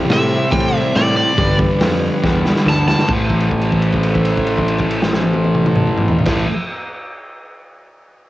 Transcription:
Already playing: transistor combo organ E4 G4 C5
0.05 picked electric bass A2, distorted electric guitar C3 G3 C4, open hi-hat
0.10 electric slide guitar E5, snare
0.49 picked electric bass A2, distorted electric guitar C3 G3 C4, electric slide guitar G5, kick, open hi-hat
0.71 distorted electric guitar G3 C4, electric slide guitar E5
0.93 picked electric bass A2, distorted electric guitar C3 G3 C4, electric slide guitar D5, snare, open hi-hat
1.14 distorted electric guitar G3 C4, electric slide guitar D5
1.34 picked electric bass G1, distorted electric guitar G2 D3 G3, transistor combo organ D4 G4 B4, kick, open hi-hat
1.57 distorted electric guitar D3 G3, kick
1.79 picked electric bass F2, distorted electric guitar G2 D3 G3, snare, open hi-hat
2.22 picked electric bass E2, distorted electric guitar G2 D3 G3, kick, snare
2.45 distorted electric guitar D3 G3, snare
2.56 snare
2.66 picked electric bass D2, distorted electric guitar G2 D3 G3, electric slide guitar A5, snare
2.87 distorted electric guitar D3 G3, electric slide guitar A5, snare
2.98 snare
3.08 picked electric bass A1, distorted electric guitar A2 E3, transistor combo organ E4 A4 C5, kick, crash
3.12 distorted electric guitar A3
3.29 kick, crash
3.40 crash
3.51 kick, crash
3.62 crash
3.72 kick, crash
3.82 crash
3.92 kick, crash
4.03 crash
4.15 kick, crash
4.25 crash
4.37 kick, crash
4.47 crash
4.56 kick, crash
4.68 crash
4.78 kick, crash
4.91 crash
5.02 snare
5.13 snare
5.23 high tom
5.34 high tom
5.44 high tom
5.55 mid tom
5.66 mid tom
5.76 mid tom
5.87 mid tom
5.98 mid tom
6.08 floor tom
6.19 floor tom
6.26 picked electric bass A1, distorted electric guitar A2 E3, transistor combo organ E4 A4 C5, kick, snare, crash
6.30 distorted electric guitar A3

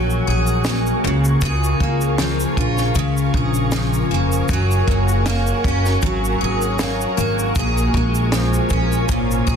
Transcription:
Already playing: upright bass A#1, steel-string acoustic guitar F#3 A#3 C#4 G#4, ambient pad F#4 A#4 G#5 C#6
0.10 shaker
0.27 upright bass A#1, steel-string acoustic guitar G#4
0.47 shaker
0.64 steel-string acoustic guitar A#3, snare, shaker
0.86 shaker
1.03 upright bass C#2, steel-string acoustic guitar C#3, ambient pad F4 G#5
1.25 shaker
1.41 upright bass C#2, steel-string acoustic guitar C#3 G#4, kick, shaker
1.64 shaker
1.80 upright bass C#2, steel-string acoustic guitar A#3, kick
2.01 shaker
2.18 steel-string acoustic guitar F3, snare, shaker
2.40 shaker
2.57 upright bass A#1, steel-string acoustic guitar F4, kick
2.78 snare, shaker
2.95 upright bass C#2, steel-string acoustic guitar C#3, kick, shaker
3.17 shaker
3.34 upright bass A#1, steel-string acoustic guitar G#4, kick
3.54 shaker
3.72 steel-string acoustic guitar F3, snare, shaker
3.93 shaker
4.11 upright bass F1, steel-string acoustic guitar A#3
4.32 shaker
4.49 upright bass F#1, steel-string acoustic guitar F#3 G#4, ambient pad F#4, kick, shaker
4.71 shaker
4.87 upright bass F#1, steel-string acoustic guitar A#3, kick
5.08 shaker
5.26 steel-string acoustic guitar A#3, snare, shaker
5.47 shaker
5.64 upright bass F#1, steel-string acoustic guitar C#4, kick
5.85 snare, shaker
6.02 upright bass G#1, steel-string acoustic guitar F#3, kick, shaker
6.25 shaker
6.41 upright bass G#1, steel-string acoustic guitar G#4
6.62 shaker
6.79 steel-string acoustic guitar A#3, snare, shaker
7.01 shaker
7.17 upright bass G#1, steel-string acoustic guitar A#3, shaker
7.39 shaker
7.56 upright bass A#1, steel-string acoustic guitar A#2 G#4, ambient pad F4 G#5, kick, shaker
7.78 shaker
7.94 upright bass A#1, steel-string acoustic guitar G#3, kick
8.15 shaker
8.32 steel-string acoustic guitar F3, snare, shaker
8.53 shaker
8.70 upright bass A#1, steel-string acoustic guitar C#4, kick, shaker
8.92 shaker
9.09 upright bass G#1, steel-string acoustic guitar A#2, kick, shaker
9.31 shaker
9.47 upright bass A#1, steel-string acoustic guitar G#4, kick, shaker

